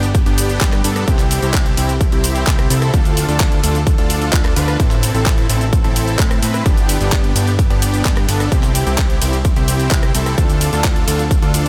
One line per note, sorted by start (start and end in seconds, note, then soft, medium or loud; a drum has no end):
0.00 0.24 G1 loud
0.00 closed hi-hat soft
0.00 impact medium
0.00 shaker soft
0.15 kick loud
0.15 closed hi-hat medium
0.15 shaker soft
0.26 0.59 G1 loud
0.26 0.58 B3 loud
0.26 0.58 D4 medium
0.26 0.58 G4 loud
0.26 closed hi-hat soft
0.38 open hi-hat loud
0.38 shaker medium
0.49 closed hi-hat soft
0.49 shaker soft
0.61 0.82 G2 loud
0.61 0.81 B3 medium
0.61 0.81 D4 medium
0.61 0.81 G4 medium
0.61 kick loud
0.61 clap loud
0.61 closed hi-hat medium
0.61 shaker soft
0.72 cross-stick medium
0.72 clap soft
0.72 closed hi-hat soft
0.84 1.05 G2 medium
0.84 1.05 B3 medium
0.84 1.05 D4 medium
0.84 1.05 A4 medium
0.84 open hi-hat loud
0.84 shaker medium
0.96 cross-stick medium
0.96 closed hi-hat soft
0.96 shaker soft
1.08 1.40 C2 loud
1.08 1.40 C4 loud
1.08 1.40 E4 medium
1.08 1.40 G4 loud
1.08 kick loud
1.08 closed hi-hat medium
1.08 shaker soft
1.19 clap soft
1.19 closed hi-hat soft
1.19 shaker soft
1.31 open hi-hat loud
1.31 shaker medium
1.42 1.75 C2 loud
1.42 1.75 C4 loud
1.42 1.75 E4 medium
1.42 1.75 G4 loud
1.42 closed hi-hat soft
1.42 shaker soft
1.54 kick loud
1.54 clap loud
1.54 closed hi-hat medium
1.54 shaker soft
1.66 closed hi-hat soft
1.77 2.10 C2 medium
1.77 1.92 C4 medium
1.77 1.92 E4 medium
1.77 1.92 G4 medium
1.77 open hi-hat loud
1.77 shaker medium
1.89 closed hi-hat soft
1.89 shaker soft
2.01 kick loud
2.01 closed hi-hat medium
2.01 shaker soft
2.12 2.45 C2 loud
2.12 2.44 C4 loud
2.12 2.44 E4 medium
2.12 2.44 G4 loud
2.12 closed hi-hat soft
2.24 open hi-hat loud
2.24 shaker medium
2.36 closed hi-hat soft
2.36 shaker soft
2.47 2.68 C2 loud
2.47 kick loud
2.47 clap loud
2.47 closed hi-hat medium
2.47 shaker soft
2.59 cross-stick medium
2.59 closed hi-hat soft
2.70 2.91 C2 loud
2.70 2.91 C4 medium
2.70 2.91 E4 medium
2.70 2.91 A4 medium
2.70 open hi-hat loud
2.70 shaker medium
2.82 cross-stick medium
2.82 closed hi-hat soft
2.82 shaker soft
2.94 3.26 D2 loud
2.94 3.26 D4 medium
2.94 3.26 F4 medium
2.94 kick loud
2.94 closed hi-hat medium
2.94 shaker soft
3.05 closed hi-hat soft
3.05 shaker soft
3.17 open hi-hat loud
3.17 shaker medium
3.28 3.61 D2 loud
3.28 3.61 D4 loud
3.28 3.61 F4 medium
3.28 3.61 A4 loud
3.28 closed hi-hat soft
3.28 shaker soft
3.40 kick loud
3.40 clap loud
3.40 closed hi-hat medium
3.40 shaker soft
3.52 closed hi-hat soft
3.63 3.96 D2 loud
3.63 3.78 D4 medium
3.63 3.78 F4 medium
3.63 3.78 A4 medium
3.63 open hi-hat loud
3.63 shaker medium
3.75 closed hi-hat soft
3.75 shaker soft
3.87 kick loud
3.87 closed hi-hat medium
3.87 shaker soft
3.98 4.31 D2 loud
3.98 4.30 D4 loud
3.98 4.30 F4 medium
3.98 4.30 A4 loud
3.98 closed hi-hat soft
4.10 open hi-hat loud
4.10 shaker medium
4.22 closed hi-hat soft
4.22 shaker soft
4.33 4.54 D2 loud
4.33 4.53 D4 medium
4.33 4.53 F4 medium
4.33 4.53 A4 medium
4.33 kick loud
4.33 clap loud
4.33 closed hi-hat medium
4.33 shaker soft
4.45 cross-stick medium
4.45 clap soft
4.45 closed hi-hat soft
4.56 4.77 D2 loud
4.56 4.77 D4 medium
4.56 4.77 F4 medium
4.56 4.77 B4 medium
4.56 open hi-hat loud
4.56 shaker medium
4.68 cross-stick medium
4.68 closed hi-hat soft
4.68 shaker soft
4.80 5.12 A1 loud
4.80 5.12 C4 medium
4.80 5.12 E4 medium
4.80 kick loud
4.80 closed hi-hat medium
4.80 shaker soft
4.91 clap soft
4.91 closed hi-hat soft
4.91 shaker soft
5.03 open hi-hat loud
5.03 shaker medium
5.14 5.47 A1 loud
5.14 5.47 C4 medium
5.14 5.47 E4 medium
5.14 5.47 A4 loud
5.14 closed hi-hat soft
5.14 shaker soft
5.26 kick loud
5.26 clap loud
5.26 closed hi-hat medium
5.26 shaker soft
5.38 closed hi-hat soft
5.49 5.82 A1 loud
5.49 5.64 C4 medium
5.49 5.64 E4 medium
5.49 5.64 A4 medium
5.49 open hi-hat loud
5.49 shaker medium
5.61 closed hi-hat soft
5.61 shaker soft
5.73 kick loud
5.73 closed hi-hat medium
5.73 shaker soft
5.84 6.17 A1 loud
5.84 6.16 C4 medium
5.84 6.16 E4 medium
5.84 6.16 A4 loud
5.84 closed hi-hat soft
5.96 open hi-hat loud
5.96 shaker medium
6.08 closed hi-hat soft
6.08 shaker soft
6.19 6.40 A2 loud
6.19 6.39 C4 medium
6.19 6.39 E4 medium
6.19 6.39 A4 medium
6.19 kick loud
6.19 clap loud
6.19 closed hi-hat medium
6.19 shaker soft
6.31 cross-stick medium
6.31 closed hi-hat soft
6.31 shaker soft
6.42 6.63 A2 medium
6.42 6.63 C4 medium
6.42 6.63 E4 medium
6.42 6.63 B4 medium
6.42 open hi-hat loud
6.42 shaker medium
6.54 cross-stick medium
6.54 closed hi-hat soft
6.54 shaker soft
6.66 6.98 G1 loud
6.66 6.98 B3 medium
6.66 6.98 D4 medium
6.66 6.98 G4 loud
6.66 kick loud
6.66 closed hi-hat medium
6.66 shaker soft
6.77 closed hi-hat soft
6.77 shaker soft
6.89 open hi-hat loud
6.89 ride medium
6.89 shaker medium
7.00 7.33 G1 loud
7.00 7.33 B3 loud
7.00 7.33 D4 medium
7.00 7.33 G4 loud
7.00 closed hi-hat soft
7.00 shaker soft
7.12 kick loud
7.12 clap loud
7.12 closed hi-hat medium
7.12 shaker soft
7.24 closed hi-hat soft
7.35 7.68 G1 loud
7.35 7.50 B3 medium
7.35 7.50 D4 medium
7.35 7.50 G4 medium
7.35 open hi-hat loud
7.35 ride medium
7.35 shaker medium
7.47 closed hi-hat soft
7.47 shaker soft
7.59 kick loud
7.59 closed hi-hat medium
7.59 shaker soft
7.70 8.03 G1 loud
7.70 8.02 B3 loud
7.70 8.02 D4 medium
7.70 8.02 G4 loud
7.70 closed hi-hat soft
7.82 open hi-hat loud
7.82 ride medium
7.82 shaker medium
7.94 closed hi-hat soft
7.94 shaker soft
8.05 8.26 G2 medium
8.05 kick loud
8.05 clap loud
8.05 closed hi-hat medium
8.05 shaker soft
8.17 cross-stick medium
8.17 clap soft
8.17 closed hi-hat soft
8.28 8.49 G1 loud
8.28 8.49 B3 medium
8.28 8.49 D4 medium
8.28 8.49 A4 medium
8.28 open hi-hat loud
8.28 ride medium
8.28 shaker medium
8.40 cross-stick medium
8.40 closed hi-hat soft
8.40 shaker soft
8.52 8.84 C2 loud
8.52 8.84 C4 loud
8.52 8.84 E4 medium
8.52 8.84 G4 loud
8.52 kick loud
8.52 closed hi-hat medium
8.52 shaker soft
8.63 clap soft
8.63 closed hi-hat soft
8.63 shaker soft
8.75 open hi-hat loud
8.75 ride medium
8.75 shaker medium
8.87 9.19 C2 loud
8.87 9.19 C4 medium
8.87 9.19 E4 medium
8.87 9.19 G4 loud
8.87 closed hi-hat soft
8.87 shaker soft
8.98 kick loud
8.98 clap loud
8.98 closed hi-hat medium
8.98 shaker soft
9.10 closed hi-hat soft
9.22 9.54 C2 loud
9.22 9.37 C4 medium
9.22 9.37 E4 medium
9.22 9.37 G4 medium
9.22 open hi-hat loud
9.22 ride medium
9.22 shaker medium
9.33 closed hi-hat soft
9.33 shaker soft
9.45 kick loud
9.45 closed hi-hat medium
9.45 shaker soft
9.56 9.89 C2 loud
9.56 9.89 C4 loud
9.56 9.89 E4 medium
9.56 9.89 G4 loud
9.56 closed hi-hat soft
9.68 open hi-hat loud
9.68 ride medium
9.68 shaker medium
9.80 closed hi-hat soft
9.80 shaker soft
9.91 10.12 C2 medium
9.91 10.11 C4 medium
9.91 10.11 E4 medium
9.91 10.11 G4 medium
9.91 kick loud
9.91 clap loud
9.91 closed hi-hat medium
9.91 shaker soft
10.03 cross-stick medium
10.03 closed hi-hat soft
10.14 10.36 C2 loud
10.14 10.35 C4 medium
10.14 10.35 E4 medium
10.14 10.35 A4 medium
10.14 open hi-hat loud
10.14 ride medium
10.14 shaker medium
10.26 cross-stick medium
10.26 closed hi-hat soft
10.26 shaker soft
10.38 10.70 D2 loud
10.38 10.70 D4 loud
10.38 10.70 F4 medium
10.38 10.70 A4 loud
10.38 kick loud
10.38 closed hi-hat medium
10.38 shaker soft
10.50 closed hi-hat soft
10.50 shaker soft
10.61 open hi-hat loud
10.61 ride medium
10.61 shaker medium
10.73 11.05 D2 loud
10.73 11.05 D4 medium
10.73 11.05 F4 medium
10.73 11.05 A4 loud
10.73 closed hi-hat soft
10.73 shaker soft
10.84 kick loud
10.84 clap loud
10.84 closed hi-hat medium
10.84 shaker soft
10.96 closed hi-hat soft
11.08 11.40 D2 loud
11.08 11.23 D4 medium
11.08 11.23 F4 medium
11.08 11.23 A4 medium
11.08 open hi-hat loud
11.08 ride medium
11.08 shaker medium
11.19 closed hi-hat soft
11.19 shaker soft
11.31 kick loud
11.31 closed hi-hat medium
11.31 shaker soft
11.42 11.69 D2 loud
11.42 11.69 D4 loud
11.42 11.69 F4 medium
11.42 11.69 A4 loud
11.42 closed hi-hat soft
11.54 open hi-hat loud
11.54 ride medium
11.54 shaker medium